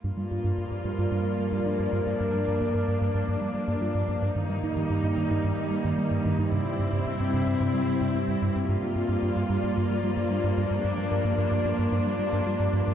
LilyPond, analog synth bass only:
\new Staff \with { instrumentName = "Analog synth bass" } { \clef bass \time 4/4 \key g \minor \tempo 4 = 111 g,16 g16 g,16 g,16 g,16 g,16 g,16 g,16 g,16 g16 g16 g,16 g16 g,16 g,16 g,16 | g,16 g16 g,16 g,16 g,16 g,16 g,16 g,16 g,16 g16 g16 g,16 g16 g,16 g,16 g,16 | g,16 g16 g,16 g,16 g,16 g,16 g,16 g,16 g,16 g16 g16 g,16 g16 g,16 g,16 g,16 | g,16 g16 g,16 g,16 g,16 g,16 g,16 g,16 g,16 g16 g16 g,16 g16 g,16 g,16 g,16 |
g,16 g16 g,16 g,16 g,16 g,16 g,16 g,16 g,16 g16 g16 g,16 g16 g,16 g,16 g,16 | g,16 g16 g,16 g,16 g,16 g,16 g,16 g,16 g,16 g16 g16 g,16 g16 g,16 g,16 g,16 | }